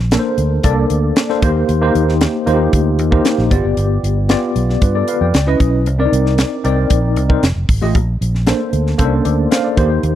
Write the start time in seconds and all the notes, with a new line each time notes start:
Already playing: A#1
0.11 A#3 D4 A4 A#4, snare, closed hi-hat
0.19 C5
0.38 D2, closed hi-hat
0.64 C2 A#3 D4 A4 D5, kick, closed hi-hat
0.90 D2, closed hi-hat
1.16 snare, closed hi-hat
1.29 A#3 D4 A4 C5, snare
1.42 D#2 A#3 D#4 G4 C5, kick, closed hi-hat
1.69 D#2, closed hi-hat
1.81 A#3 D#4 G4 C5
1.95 D#2, closed hi-hat
2.09 snare
2.21 snare, closed hi-hat
2.46 D#2 A#3 D#4 F4 C5, closed hi-hat
2.53 G4
2.73 D2, kick, closed hi-hat
2.99 D#2, closed hi-hat
3.11 A#3 D#4 G4 C5, kick
3.25 snare, closed hi-hat
3.38 A#1, snare
3.50 G1 B3 F4 G4 D5, kick, closed hi-hat
3.65 F#1
3.77 G1, closed hi-hat
4.03 G1, closed hi-hat
4.29 B3 F4 G4 D5, snare, closed hi-hat
4.56 B1, closed hi-hat
4.70 snare
4.82 G2 F4 B4, kick, closed hi-hat
4.95 A4 D5
5.08 B4 F5, closed hi-hat
5.21 F2 D5 G5
5.34 C#2, snare, closed hi-hat
5.47 C#4 E4 B4 D#5
5.60 B1, kick, closed hi-hat
5.86 C2, closed hi-hat
5.99 C4 D4 A#4 D5
6.05 D#4
6.12 C2, closed hi-hat
6.26 snare
6.38 snare, closed hi-hat
6.64 C2 C4 D#4 A#4 D5, closed hi-hat
6.90 A#1, kick, closed hi-hat
7.16 C2, closed hi-hat
7.29 C4 D#4 A#4 C5, kick
7.43 F1, snare, closed hi-hat
7.56 F1
7.69 G#1, kick, open hi-hat
7.81 A1 A3 F4 G4 D#5
7.95 A#1, kick, closed hi-hat
8.21 A#1, closed hi-hat
8.35 snare
8.46 A#3 D4 A4 C5, snare, closed hi-hat
8.73 D2, closed hi-hat
8.87 snare
8.98 C2 A#3 C#4 A4 C5, kick, closed hi-hat
9.05 D4
9.25 D2 A4 D5, closed hi-hat
9.51 C5 F5, snare, closed hi-hat
9.64 A4 D5
9.76 D#2 A#3 D#4 G4 C5, kick, closed hi-hat
10.03 D#2, closed hi-hat